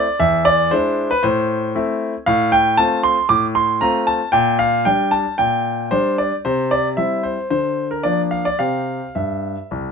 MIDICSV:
0, 0, Header, 1, 2, 480
1, 0, Start_track
1, 0, Key_signature, -1, "major"
1, 0, Tempo, 518583
1, 179, Time_signature, 4, 2, 24, 8
1, 4977, Tempo, 530973
1, 7377, Tempo, 558140
1, 8998, End_track
2, 0, Start_track
2, 0, Title_t, "Grand piano"
2, 0, Program_c, 0, 0
2, 0, Note_on_c, 0, 74, 83
2, 176, Note_off_c, 0, 74, 0
2, 181, Note_on_c, 0, 76, 93
2, 183, Note_on_c, 0, 40, 66
2, 417, Note_on_c, 0, 74, 96
2, 420, Note_off_c, 0, 76, 0
2, 647, Note_off_c, 0, 40, 0
2, 658, Note_off_c, 0, 74, 0
2, 659, Note_on_c, 0, 72, 79
2, 664, Note_on_c, 0, 56, 42
2, 668, Note_on_c, 0, 62, 49
2, 672, Note_on_c, 0, 64, 53
2, 1007, Note_off_c, 0, 56, 0
2, 1009, Note_off_c, 0, 62, 0
2, 1012, Note_off_c, 0, 64, 0
2, 1018, Note_off_c, 0, 72, 0
2, 1024, Note_on_c, 0, 71, 82
2, 1137, Note_on_c, 0, 72, 77
2, 1141, Note_off_c, 0, 71, 0
2, 1145, Note_on_c, 0, 45, 65
2, 1581, Note_off_c, 0, 72, 0
2, 1607, Note_off_c, 0, 45, 0
2, 1622, Note_on_c, 0, 60, 46
2, 1623, Note_on_c, 0, 57, 48
2, 1626, Note_on_c, 0, 64, 53
2, 1966, Note_off_c, 0, 60, 0
2, 1967, Note_off_c, 0, 57, 0
2, 1969, Note_off_c, 0, 64, 0
2, 2096, Note_on_c, 0, 77, 91
2, 2102, Note_on_c, 0, 45, 73
2, 2333, Note_on_c, 0, 79, 99
2, 2335, Note_off_c, 0, 77, 0
2, 2548, Note_off_c, 0, 79, 0
2, 2561, Note_off_c, 0, 45, 0
2, 2568, Note_on_c, 0, 81, 94
2, 2574, Note_on_c, 0, 57, 43
2, 2578, Note_on_c, 0, 60, 47
2, 2582, Note_on_c, 0, 65, 49
2, 2785, Note_off_c, 0, 81, 0
2, 2809, Note_on_c, 0, 84, 87
2, 2919, Note_off_c, 0, 57, 0
2, 2922, Note_off_c, 0, 60, 0
2, 2924, Note_off_c, 0, 65, 0
2, 3027, Note_off_c, 0, 84, 0
2, 3046, Note_on_c, 0, 86, 89
2, 3050, Note_on_c, 0, 45, 58
2, 3192, Note_off_c, 0, 86, 0
2, 3287, Note_on_c, 0, 84, 84
2, 3505, Note_off_c, 0, 84, 0
2, 3516, Note_off_c, 0, 45, 0
2, 3526, Note_on_c, 0, 82, 87
2, 3533, Note_on_c, 0, 60, 48
2, 3534, Note_on_c, 0, 57, 49
2, 3541, Note_on_c, 0, 65, 50
2, 3766, Note_on_c, 0, 81, 78
2, 3767, Note_off_c, 0, 82, 0
2, 3877, Note_off_c, 0, 60, 0
2, 3878, Note_off_c, 0, 57, 0
2, 3882, Note_off_c, 0, 65, 0
2, 3984, Note_off_c, 0, 81, 0
2, 3999, Note_on_c, 0, 79, 86
2, 4006, Note_on_c, 0, 46, 69
2, 4223, Note_off_c, 0, 79, 0
2, 4248, Note_on_c, 0, 77, 84
2, 4480, Note_off_c, 0, 46, 0
2, 4491, Note_on_c, 0, 79, 81
2, 4494, Note_off_c, 0, 77, 0
2, 4497, Note_on_c, 0, 55, 45
2, 4501, Note_on_c, 0, 62, 51
2, 4732, Note_on_c, 0, 81, 72
2, 4734, Note_off_c, 0, 79, 0
2, 4843, Note_off_c, 0, 55, 0
2, 4846, Note_off_c, 0, 62, 0
2, 4976, Note_off_c, 0, 81, 0
2, 4980, Note_on_c, 0, 79, 80
2, 4989, Note_on_c, 0, 46, 54
2, 5452, Note_off_c, 0, 46, 0
2, 5458, Note_on_c, 0, 72, 80
2, 5462, Note_off_c, 0, 79, 0
2, 5464, Note_on_c, 0, 55, 42
2, 5467, Note_on_c, 0, 62, 50
2, 5677, Note_off_c, 0, 72, 0
2, 5706, Note_on_c, 0, 74, 60
2, 5810, Note_off_c, 0, 55, 0
2, 5813, Note_off_c, 0, 62, 0
2, 5849, Note_off_c, 0, 74, 0
2, 5945, Note_on_c, 0, 72, 71
2, 5951, Note_on_c, 0, 48, 61
2, 6183, Note_off_c, 0, 72, 0
2, 6183, Note_on_c, 0, 74, 74
2, 6325, Note_off_c, 0, 74, 0
2, 6408, Note_off_c, 0, 48, 0
2, 6416, Note_on_c, 0, 76, 72
2, 6423, Note_on_c, 0, 55, 37
2, 6428, Note_on_c, 0, 64, 41
2, 6429, Note_on_c, 0, 60, 39
2, 6654, Note_off_c, 0, 76, 0
2, 6655, Note_on_c, 0, 72, 58
2, 6763, Note_off_c, 0, 55, 0
2, 6766, Note_off_c, 0, 60, 0
2, 6766, Note_off_c, 0, 64, 0
2, 6869, Note_off_c, 0, 72, 0
2, 6900, Note_on_c, 0, 72, 66
2, 6902, Note_on_c, 0, 50, 44
2, 7223, Note_off_c, 0, 72, 0
2, 7265, Note_on_c, 0, 70, 50
2, 7368, Note_off_c, 0, 50, 0
2, 7379, Note_on_c, 0, 74, 68
2, 7382, Note_off_c, 0, 70, 0
2, 7385, Note_on_c, 0, 53, 37
2, 7389, Note_on_c, 0, 58, 34
2, 7393, Note_on_c, 0, 62, 44
2, 7520, Note_off_c, 0, 74, 0
2, 7616, Note_on_c, 0, 77, 60
2, 7725, Note_off_c, 0, 53, 0
2, 7727, Note_off_c, 0, 58, 0
2, 7729, Note_off_c, 0, 62, 0
2, 7734, Note_off_c, 0, 77, 0
2, 7739, Note_on_c, 0, 74, 64
2, 7856, Note_off_c, 0, 74, 0
2, 7856, Note_on_c, 0, 77, 67
2, 7859, Note_on_c, 0, 60, 34
2, 7859, Note_on_c, 0, 67, 38
2, 7861, Note_on_c, 0, 48, 42
2, 8198, Note_off_c, 0, 48, 0
2, 8245, Note_off_c, 0, 60, 0
2, 8246, Note_off_c, 0, 67, 0
2, 8340, Note_on_c, 0, 76, 45
2, 8341, Note_off_c, 0, 77, 0
2, 8343, Note_on_c, 0, 43, 39
2, 8678, Note_off_c, 0, 43, 0
2, 8821, Note_on_c, 0, 36, 42
2, 8998, Note_off_c, 0, 36, 0
2, 8998, Note_off_c, 0, 76, 0
2, 8998, End_track
0, 0, End_of_file